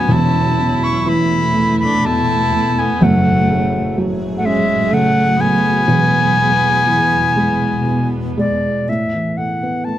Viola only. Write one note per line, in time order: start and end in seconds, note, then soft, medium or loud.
0.00 0.13 B3 medium
0.11 0.84 E4 medium
0.84 1.09 E4 medium
1.09 1.80 E4 medium
1.84 2.08 D4 medium
2.06 2.82 E4 medium
2.80 3.05 B3 medium
3.03 3.98 A3 medium
4.39 4.47 A3 medium
4.45 4.93 G#3 medium
4.91 5.38 A3 medium
5.37 8.36 B3 medium